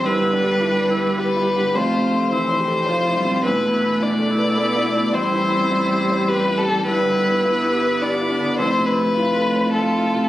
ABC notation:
X:1
M:3/4
L:1/8
Q:1/4=105
K:Gmix
V:1 name="Violin"
B4 B2 | c2 c4 | B2 d4 | c4 B A |
B4 d2 | c B3 A2 |]
V:2 name="Upright piano"
(3G,, D, G, (3E B G (3B E D, | (3F,, C, A, (3E c A (3c E C, | (3E,, B,, B, (3E A B (3A E B,, | (3A,, E, C (3E G c (3G E E, |
(3G,, D, B, (3E G B (3G E D, | (3F,, C, C (3E A c (3A E C, |]
V:3 name="Viola"
E D D E G2 | F2 E G F2 | E2 D E3 | E4 G2 |
E4 D D | E2 F2 F2 |]
V:4 name="Cello"
G,6 | A,2 E,2 F, G, | A,4 B, A, | G,6 |
G,2 B, B,3 | A,2 A,4 |]
V:5 name="Sub bass" clef=bass
G,,,6 | F,,,6 | E,,,6 | A,,,6 |
G,,,6 | F,,,6 |]